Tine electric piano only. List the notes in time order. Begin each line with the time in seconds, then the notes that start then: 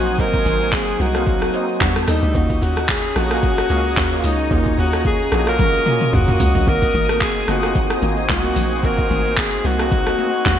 Already playing: F#3 A#3 C4 D#4 F#4
0.18 F#3 A#3 C4 D#4
0.99 F#3 A#3 C4 D#4
1.14 F#3 A#3 C4 F5
1.53 F#3 A#3 C4 D#4
1.80 G3 B3 D4 F#4
1.95 G3 B3 D4 A4
2.34 A#3 C#4 F4 F#4
3.15 A#3 C#4 F4 G#4
3.30 A#3 C#4 G#4 F5
3.69 A#3 C#4 G#4 F5
4.11 A#3 C#4 F4 G#4
4.50 A#3 C#4 F4 F#4
5.31 A#3 C#4 F4 F#4
5.46 A#3 C#4 F4 F#4
5.85 A#3 C#4 F4 G#4
6.27 A#3 C#4 F#4 F5
6.67 A#3 C4 D#4 F#4
7.48 A#3 C4 D#4 F4
7.63 A#3 C4 D#4 G#4
8.02 A#3 C4 D#4 F#4
8.44 A#3 C4 D#4 F#4
8.83 A#3 C4 D#4 F#4
9.64 A#3 C4 D#4 F#4
9.79 A#3 C4 D#4 F#4
10.18 A#3 C4 D#4 F#4
10.45 G3 B3 D4 F#4